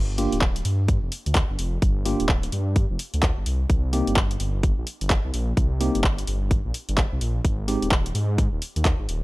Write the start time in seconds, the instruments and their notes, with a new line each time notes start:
Already playing: detuned saw bass G1
0.18 tine electric piano A#3 D4 F4 G4, open hi-hat
0.32 detuned saw bass D1, closed hi-hat
0.41 kick, clap
0.56 closed hi-hat
0.65 detuned saw bass G2, open hi-hat
0.88 kick, closed hi-hat
1.03 detuned saw bass F1
1.12 open hi-hat
1.26 detuned saw bass D2, closed hi-hat
1.35 kick, clap, closed hi-hat
1.50 detuned saw bass G1
1.59 detuned saw bass F1, open hi-hat
1.82 detuned saw bass G1, kick, closed hi-hat
2.06 tine electric piano A#3 D4 F4 G4, open hi-hat
2.20 detuned saw bass D1, closed hi-hat
2.29 kick, clap
2.43 closed hi-hat
2.52 detuned saw bass G2, open hi-hat
2.76 kick, closed hi-hat
2.90 detuned saw bass F1
2.99 open hi-hat
3.14 detuned saw bass D2, closed hi-hat
3.23 kick, clap, closed hi-hat
3.37 detuned saw bass G1
3.46 detuned saw bass C2, open hi-hat
3.70 detuned saw bass C2, kick, closed hi-hat
3.93 tine electric piano A#3 C4 D#4 G4, open hi-hat
4.07 detuned saw bass G1, closed hi-hat
4.16 kick, clap
4.31 closed hi-hat
4.40 detuned saw bass G1, open hi-hat
4.63 kick, closed hi-hat
4.78 detuned saw bass A#1
4.87 open hi-hat
5.01 detuned saw bass G1, closed hi-hat
5.10 kick, clap, closed hi-hat
5.25 detuned saw bass C2
5.34 detuned saw bass A#1, open hi-hat
5.57 detuned saw bass C2, kick, closed hi-hat
5.80 tine electric piano A#3 C4 D#4 G4, open hi-hat
5.95 detuned saw bass G1, closed hi-hat
6.04 kick, clap
6.18 closed hi-hat
6.27 detuned saw bass G1, open hi-hat
6.51 kick, closed hi-hat
6.65 detuned saw bass A#1
6.74 open hi-hat
6.89 detuned saw bass G1, closed hi-hat
6.98 kick, clap, closed hi-hat
7.12 detuned saw bass C2
7.21 detuned saw bass A#1, open hi-hat
7.45 detuned saw bass G#1, kick, closed hi-hat
7.68 tine electric piano G#3 C4 D#4 G4, open hi-hat
7.82 detuned saw bass D#1, closed hi-hat
7.91 kick, clap
8.06 closed hi-hat
8.15 detuned saw bass G#2, open hi-hat
8.38 kick, closed hi-hat
8.53 detuned saw bass D#1
8.62 open hi-hat
8.76 detuned saw bass D#2, closed hi-hat
8.85 kick, clap, closed hi-hat
8.99 detuned saw bass G#1
9.09 detuned saw bass D#1, open hi-hat